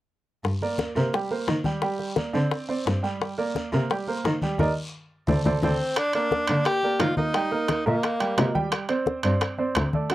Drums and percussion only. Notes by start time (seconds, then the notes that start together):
0.44 high bongo, high conga, long guiro
0.61 high conga
0.78 high bongo, high conga, short guiro
0.95 high conga, short guiro
1.13 high bongo, high conga, long guiro
1.31 high conga
1.48 high bongo, low bongo, high conga, short guiro
1.64 high conga, short guiro
1.82 high bongo, high conga, long guiro
1.99 high bongo, high conga
2.16 high bongo, high conga, short guiro
2.34 high bongo, high conga, short guiro
2.51 high bongo, high conga, long guiro
2.69 high conga
2.86 high bongo, low bongo, high conga, short guiro
3.04 high bongo, short guiro
3.21 high bongo, high conga, long guiro
3.38 high conga
3.55 high bongo, high conga, short guiro
3.72 high conga, short guiro
3.90 high bongo, high conga, long guiro
4.07 high conga
4.25 high bongo, low bongo, high conga, short guiro
4.42 high conga, short guiro
4.59 low bongo, high conga, long guiro
5.27 low bongo, high conga, long guiro
5.45 low bongo, high conga, long guiro
5.62 low bongo, high conga, long guiro
5.96 high bongo, high conga, high timbale
6.13 high conga, high timbale
6.31 high bongo, high conga
6.47 high conga, high timbale
6.65 high bongo, high conga, high timbale
6.83 high conga
6.99 high bongo, low bongo, high conga, high timbale, low timbale
7.17 high conga
7.34 high bongo, high timbale
7.52 high bongo, high conga
7.68 high bongo, high conga, high timbale
7.87 high bongo, high conga
8.03 high bongo, high conga, high timbale
8.20 high conga, high timbale
8.38 high bongo, low bongo, high conga, high timbale, low timbale
8.55 high bongo, high conga
8.72 high bongo, high conga, high timbale
8.89 high conga, high timbale
9.06 high bongo, high conga
9.23 high conga, high timbale
9.41 high bongo, high conga, high timbale
9.58 high conga
9.75 high bongo, low bongo, high conga, high timbale
9.93 high conga
10.10 high bongo, high conga, high timbale